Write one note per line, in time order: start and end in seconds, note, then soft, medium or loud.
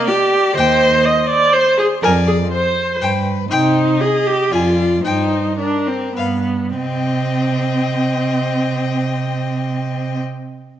0.07 0.56 G4 medium
0.07 0.57 D5 medium
0.55 0.97 D#2 medium
0.55 1.06 C5 medium
0.55 1.05 D#5 medium
0.55 0.79 G5 medium
1.04 2.02 C5 medium
1.04 1.29 D#5 medium
1.29 1.55 D5 medium
1.53 1.77 C5 medium
1.78 1.86 G#4 medium
2.03 2.44 F2 medium
2.03 2.11 A#4 medium
2.03 2.51 D5 medium
2.03 2.26 G#5 medium
2.27 2.35 G#4 medium
2.51 3.00 C5 medium
3.01 3.42 G2 medium
3.01 3.49 B4 soft
3.01 3.24 G5 medium
3.50 3.92 C3 medium
3.50 4.02 D#4 medium
3.50 4.02 C5 medium
3.50 3.74 G5 medium
4.00 4.28 G#4 medium
4.00 4.53 D#5 medium
4.26 4.54 G4 medium
4.51 4.95 F2 medium
4.51 5.04 F4 medium
4.51 5.03 D5 medium
4.51 4.76 G#5 soft
5.04 5.50 G2 medium
5.04 5.58 D#4 medium
5.04 5.58 C5 medium
5.04 5.29 G5 soft
5.58 5.89 D4 medium
5.58 6.15 A#4 soft
5.87 6.16 C4 medium
6.16 6.68 G2 soft
6.16 6.77 B3 soft
6.16 6.25 B4 soft
6.16 6.45 F5 soft
6.77 10.19 C3 medium
6.77 10.18 C4 medium
6.77 10.19 D#5 soft
6.77 10.20 G5 soft